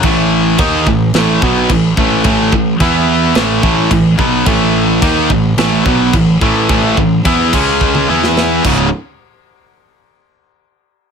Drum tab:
CC |x---x---x---x---|x---x---x---x---|x---x---x---x---|x---x-x-------x-|
SD |--------o-------|--------o-------|--------o-------|-----------oo---|
T1 |----------------|----------------|----------------|---------o------|
BD |o---o-o---o-o-o-|o-o-o-----o-o-o-|o---o-o---o-o-o-|o-o-o-o-o-----o-|

CC |----------------|
SD |----------------|
T1 |----------------|
BD |----------------|